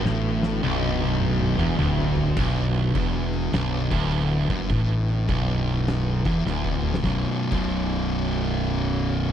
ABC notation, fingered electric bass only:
X:1
M:4/4
L:1/16
Q:"Swing" 1/4=103
K:Bm
V:1 name="Fingered electric bass" clef=bass
A,,,4 B,,,,6 E,,,2 D,,,4 | B,,,,4 E,,,4 B,,,,2 D,,,4 F,,,2 | A,,,4 B,,,,6 E,,,2 D,,,4 | B,,,, z2 B,,,,12- B,,,, |]